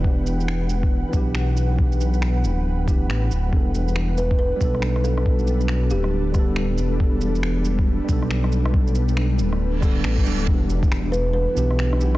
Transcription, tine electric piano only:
X:1
M:4/4
L:1/8
Q:"Swing 16ths" 1/4=138
K:Em
V:1 name="Tine electric piano"
[E,B,DG]4- [E,B,DG] [E,B,DG]3 | [E,B,DG]4- [E,B,DG] [E,B,DG]2 z | [G,B,DA]4- [G,B,DA] [G,B,DA]3 | [G,B,DA]4- [G,B,DA] [G,B,DA]3 |
[G,B,DA]4- [G,B,DA] [G,B,DA]3 | [G,B,DA]4- [G,B,DA] [G,B,DA]2 [G,B,DA] | [E,B,DG]4- [E,B,DG] [E,B,DG]2 [E,B,DG] |]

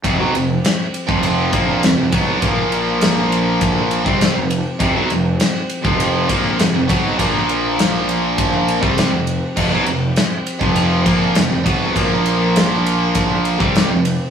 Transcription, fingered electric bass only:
X:1
M:4/4
L:1/16
Q:1/4=100
K:Bbdor
V:1 name="Fingered electric bass" clef=bass
F,,, =B,,, F,,,2 z3 F,,,3 _B,,,2 F,,, F,,, =B,,,2 | B,,,8- B,,,3 C,,2 F,,,2 z | F,,, =B,,, F,,,2 z3 F,,,3 _B,,,2 F,,, F,,, =B,,,2 | B,,,8- B,,,3 C,,2 F,,,2 z |
F,,, =B,,, F,,,2 z3 F,,,3 _B,,,2 F,,, F,,, =B,,,2 | B,,,8- B,,,3 C,,2 F,,,2 z |]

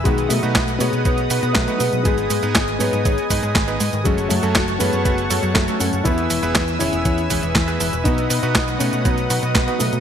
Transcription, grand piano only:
X:1
M:4/4
L:1/8
Q:1/4=120
K:Bmix
V:1 name="Grand piano"
[D,G,] [F,A,]2 [G,B,]3 [F,A,] [G,B,] | [G,B,]3 [G,B,]2 z3 | [C,G,] [F,A,]2 [G,B,]3 [F,A,] [A,C] | [B,E]3 [CE]2 z3 |
[B,D]3 [A,C] [F,B,]3 [F,A,] |]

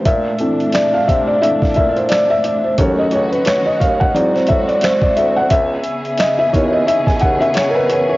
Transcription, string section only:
X:1
M:4/4
L:1/8
Q:"Swing 16ths" 1/4=88
K:C#m
V:1 name="String section"
[^A,,=A,=D]8 | [D,CF]4 [G,^B,F]4 | [C,B,CG]8 |]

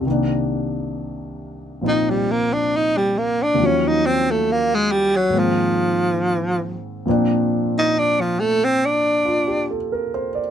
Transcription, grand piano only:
X:1
M:4/4
L:1/16
Q:"Swing" 1/4=69
K:Cm
V:1 name="Grand piano"
z16 | z16 | z8 z2 F G =A B c d |]
V:2 name="Grand piano" clef=bass
[C,,C,E,B,D]8 [B,,F,CE]8 | [E,,E,F,_G,_D]8 [A,,E,A,B,C]8 | [B,,F,B,CD]16 |]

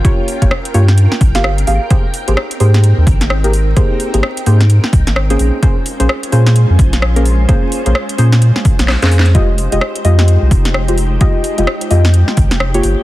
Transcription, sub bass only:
X:1
M:4/4
L:1/16
Q:"Swing 16ths" 1/4=129
K:Fm
V:1 name="Sub bass" clef=bass
z3 G,,, z2 G,,3 z B,,, G,,,3 A,,, z | z3 A,,, z2 A,,3 E,, A,,,6 | z3 A,,, z2 A,,3 z C,, A,,,3 B,,, z | z3 B,,, z2 B,,3 F,, B,,,6 |
z3 B,,, z2 B,,3 z2 B,,,2 F,,3 | F,,,3 F,,, z2 F,,3 C,, F,,,6 | z3 F,,, z2 F,,3 z A,,, F,,,3 G,,, z |]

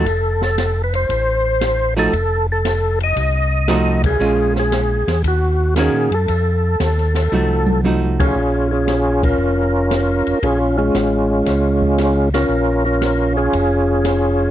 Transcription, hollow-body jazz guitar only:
X:1
M:4/4
L:1/8
Q:"Swing" 1/4=116
K:Bbm
V:1 name="Hollow-body jazz guitar"
z6 z [F,=A,EG] | z6 [F,=A,EG] z | [A,DF]3 z3 [E,B,DG] z | z4 [F,=A,EG]2 [F,A,EG]2 |
z8 | z8 | z8 |]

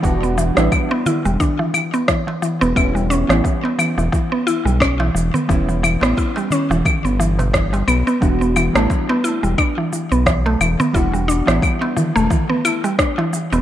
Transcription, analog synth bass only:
X:1
M:4/4
L:1/16
Q:"Swing 16ths" 1/4=88
K:Edor
V:1 name="Analog synth bass" clef=bass
E,,,3 A,,, z3 E,,, z6 z E,,, | E,,,3 A,,, z3 E,,, z3 B,,,3 E,,, z | E,,,3 A,,, z3 E,,, z G,,,4- G,,, B,,, z | E,,,3 A,,, z3 E,,, z3 B,,,3 E,,, z |
E,,,3 A,,, z3 E,,, z6 z E,,, |]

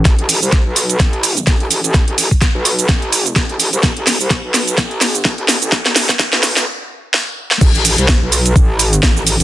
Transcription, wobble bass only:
X:1
M:4/4
L:1/16
Q:"Swing 16ths" 1/4=127
K:Am
V:1 name="Wobble bass" clef=bass
A,,, A,,,2 C,,2 B,,,3 A,,,4 A,,,3 A,,,- | A,,, A,,,2 z2 B,,,3 A,,,4 A,,,3 C,, | A,,, A,,,2 C,,2 B,,,3 A,,,4 A,,,3 A,,,- | A,,, A,,,2 z2 B,,,3 z8 |
A,,, A,,,2 C,,2 B,,,3 A,,,4 A,,,3 A,,, |]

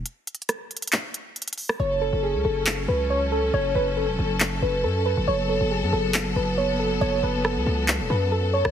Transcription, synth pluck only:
X:1
M:4/4
L:1/8
Q:1/4=138
K:F#m
V:1 name="Synth pluck"
z8 | c A G A z B c A | c B A3 B A B | c A G A z B c A |
c B A3 B A c |]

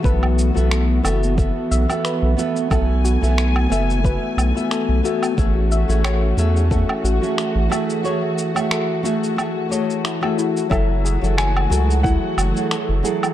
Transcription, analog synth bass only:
X:1
M:4/4
L:1/16
Q:"Swing 16ths" 1/4=90
K:F#m
V:1 name="Analog synth bass" clef=bass
B,,,3 B,,,3 F,,,3 z B,,, z2 B,,, z2 | B,,,3 B,,,3 F,,,3 z B,,, z2 B,,, z2 | A,,,3 A,,,3 E,,3 z A,,, z2 A,,, z2 | z16 |
F,,,3 F,,,3 C,,3 z F,,, z2 F,,, z2 |]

